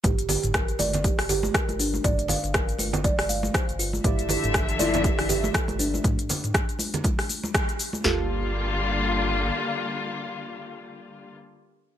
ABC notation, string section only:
X:1
M:4/4
L:1/8
Q:"Swing 16ths" 1/4=120
K:Gdor
V:1 name="String section" clef=bass
z8 | z8 | [D,F,A,e]8 | z8 |
[D,G,B,F]8- | [D,G,B,F]8 |]